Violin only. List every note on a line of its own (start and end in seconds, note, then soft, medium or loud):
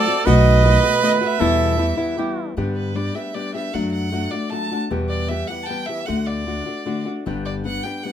0.00 0.27 D5 loud
0.27 0.99 D#5 medium
1.04 1.12 D#5 medium
1.23 2.14 E5 medium
2.76 2.97 B4 medium
2.96 3.17 D5 medium
3.15 3.36 E5 medium
3.34 3.54 D5 medium
3.55 3.75 E5 medium
3.74 3.91 F#5 medium
3.92 4.32 F#5 medium
4.31 4.51 D5 medium
4.50 4.80 A5 medium
5.09 5.30 D5 medium
5.28 5.49 E5 medium
5.47 5.65 F#5 medium
5.63 5.87 G5 medium
5.63 5.68 A5 medium
5.86 6.07 E5 medium
6.06 6.28 F#5 medium
6.26 7.06 D5 medium
7.45 7.54 D5 medium
7.65 7.85 F#5 medium
7.83 8.05 G5 medium
8.03 8.12 F#5 medium